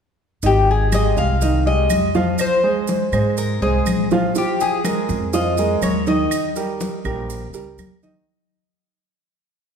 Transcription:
0.43 1.13 G#1 medium
0.43 0.84 D#3 medium
0.43 0.84 D#4 medium
0.43 0.70 G4 medium
0.43 0.84 D#5 medium
0.43 high conga soft
0.43 maracas medium
0.68 0.95 G#4 medium
0.68 high conga soft
0.92 1.32 G#3 medium
0.92 1.33 G4 medium
0.92 1.33 G#4 medium
0.92 1.18 D#5 loud
0.92 high conga medium
0.92 claves medium
0.92 maracas medium
1.17 1.86 C2 medium
1.17 1.63 F5 loud
1.17 high conga soft
1.17 maracas soft
1.41 1.62 D#3 medium
1.41 1.62 D#4 medium
1.41 1.62 D#5 medium
1.41 high conga soft
1.41 maracas medium
1.65 2.06 G#3 medium
1.65 2.06 G4 medium
1.65 2.06 G#4 medium
1.65 2.40 D#5 loud
1.65 high conga soft
1.90 2.34 F2 medium
1.90 high conga medium
1.90 claves medium
1.90 maracas medium
2.15 2.55 F3 medium
2.15 2.55 F4 medium
2.15 2.56 F5 medium
2.15 high conga medium
2.15 maracas soft
2.38 3.41 C5 loud
2.38 high conga soft
2.38 claves medium
2.38 maracas medium
2.63 3.04 G#3 medium
2.63 3.04 G#4 medium
2.63 3.04 C5 medium
2.63 high conga soft
2.88 high conga medium
2.88 maracas medium
3.12 3.58 G#2 medium
3.12 3.53 G#3 medium
3.12 3.54 G#4 medium
3.12 3.54 C5 medium
3.12 high conga soft
3.12 claves medium
3.12 maracas soft
3.37 3.62 A#4 medium
3.37 high conga soft
3.37 maracas medium
3.61 3.84 C2 medium
3.61 4.03 G#3 medium
3.61 4.08 G#4 medium
3.61 4.03 G#4 medium
3.61 4.03 C5 medium
3.61 high conga soft
3.86 4.30 A#1 medium
3.86 high conga medium
3.86 claves medium
3.86 maracas medium
4.11 4.31 F3 medium
4.11 4.32 F4 medium
4.11 4.32 F5 medium
4.11 high conga medium
4.11 maracas soft
4.35 4.76 F3 medium
4.35 4.76 F4 medium
4.35 4.60 G4 medium
4.35 4.76 F5 medium
4.35 high conga soft
4.35 maracas medium
4.60 5.37 G#4 medium
4.60 high conga soft
4.60 maracas soft
4.84 5.25 G#3 medium
4.84 5.25 G#4 medium
4.84 5.25 A#4 medium
4.84 high conga medium
4.84 claves medium
4.84 maracas medium
5.09 5.79 F2 loud
5.09 high conga soft
5.09 maracas soft
5.33 5.53 F3 medium
5.33 5.54 F4 medium
5.33 5.83 D#5 medium
5.33 5.54 F5 medium
5.33 high conga soft
5.33 maracas medium
5.57 5.99 G#3 medium
5.57 5.99 G#4 medium
5.57 5.99 A#4 medium
5.57 high conga soft
5.57 maracas medium
5.82 6.25 D#2 medium
5.82 6.07 C#5 medium
5.82 high conga medium
5.82 claves medium
5.82 maracas medium
6.07 6.47 D#3 medium
6.07 6.48 D#4 medium
6.07 7.75 D#5 medium
6.07 6.48 D#5 medium
6.07 high conga medium
6.07 maracas soft
6.31 high conga soft
6.31 claves medium
6.31 maracas medium
6.56 6.96 G3 medium
6.56 6.97 G4 medium
6.56 6.97 A#4 medium
6.56 high conga soft
6.56 maracas medium
6.81 high conga medium
6.81 maracas medium
7.05 7.50 A#1 loud
7.05 7.45 G3 medium
7.05 7.46 G4 medium
7.05 7.46 A#4 medium
7.05 high conga soft
7.05 claves medium
7.05 maracas soft
7.30 high conga soft
7.30 maracas medium
7.53 7.76 C#2 medium
7.53 7.94 G3 medium
7.53 7.94 G4 medium
7.53 7.94 A#4 medium
7.53 high conga soft
7.53 maracas medium
7.77 8.21 D#2 medium
7.77 high conga medium
7.77 claves medium
7.77 maracas medium
8.03 8.23 D#3 medium
8.03 8.23 D#4 medium
8.03 8.23 D#5 medium
8.03 high conga medium
8.03 maracas soft

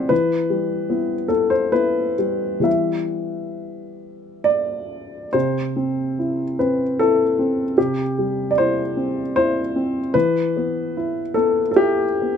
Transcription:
0.00 0.14 G3 soft
0.00 0.14 C4 soft
0.00 0.14 E4 soft
0.00 0.14 C5 medium
0.00 0.13 D5 medium
0.00 0.14 E5 medium
0.00 0.13 F#5 medium
0.09 2.58 E3 soft
0.09 1.29 B4 medium
0.50 1.14 G3 soft
0.90 1.26 B3 soft
0.90 1.26 E4 soft
1.28 1.71 B3 soft
1.28 1.50 A4 medium
1.50 1.72 C5 medium
1.72 2.14 B3 soft
1.72 2.15 E4 soft
1.72 2.66 B4 medium
2.18 2.59 G3 soft
2.60 5.28 E3 soft
2.60 5.28 G3 soft
2.60 5.29 B3 soft
2.60 5.29 E4 soft
2.60 4.46 E5 medium
4.44 5.33 D5 medium
5.33 7.73 C3 soft
5.33 6.58 C5 medium
5.76 6.43 C4 soft
6.19 6.83 E4 soft
6.59 7.23 C4 soft
6.59 6.99 B4 medium
6.99 7.62 E4 soft
6.99 7.77 A4 medium
7.39 8.01 C4 soft
7.78 10.11 C3 soft
7.78 8.50 G4 medium
8.19 8.81 G3 soft
8.51 8.57 D5 medium
8.58 9.21 E4 soft
8.58 9.34 C5 medium
8.97 9.59 C4 soft
9.36 9.99 E4 soft
9.36 10.15 C5 medium
9.76 10.15 C4 soft
10.14 12.37 E3 medium
10.14 11.35 B4 medium
10.57 11.20 B3 soft
10.97 11.61 E4 soft
11.34 12.03 B3 soft
11.34 11.69 A4 medium
11.71 11.78 A4 medium
11.76 12.37 E4 soft
11.76 12.37 G4 medium
12.22 12.37 B3 soft

